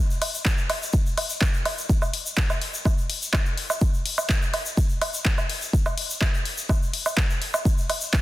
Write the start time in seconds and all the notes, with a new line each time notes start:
0.10 shaker
0.22 open hi-hat, low woodblock
0.34 shaker
0.45 kick, clap, shaker
0.58 shaker
0.70 open hi-hat, low woodblock
0.83 shaker
0.93 kick, shaker
1.06 shaker
1.18 open hi-hat, low woodblock
1.30 shaker
1.41 kick, clap, shaker
1.54 shaker
1.65 open hi-hat, low woodblock
1.78 shaker
1.89 kick, shaker
2.02 low woodblock, shaker
2.14 open hi-hat
2.26 shaker
2.37 kick, clap, shaker
2.50 low woodblock, shaker
2.62 open hi-hat
2.74 shaker
2.85 kick, low woodblock, shaker
2.98 shaker
3.10 open hi-hat
3.22 shaker
3.33 kick, clap, low woodblock, shaker
3.46 shaker
3.58 open hi-hat
3.70 low woodblock, shaker
3.81 kick, shaker
3.94 shaker
4.06 open hi-hat
4.18 low woodblock, shaker
4.29 kick, clap, shaker
4.42 shaker
4.54 open hi-hat, low woodblock
4.66 shaker
4.77 kick, shaker
4.89 shaker
5.02 open hi-hat, low woodblock
5.14 shaker
5.25 kick, clap, shaker
5.38 low woodblock, shaker
5.50 open hi-hat
5.62 shaker
5.73 kick, shaker
5.86 low woodblock, shaker
5.98 open hi-hat
6.10 shaker
6.21 kick, clap, low woodblock, shaker
6.34 shaker
6.46 open hi-hat
6.58 shaker
6.69 kick, low woodblock, shaker
6.82 shaker
6.93 open hi-hat
7.05 low woodblock, shaker
7.17 kick, clap, shaker
7.30 shaker
7.42 open hi-hat
7.54 low woodblock, shaker
7.65 kick, shaker
7.78 shaker
7.90 open hi-hat, low woodblock
8.01 shaker
8.13 kick, clap, shaker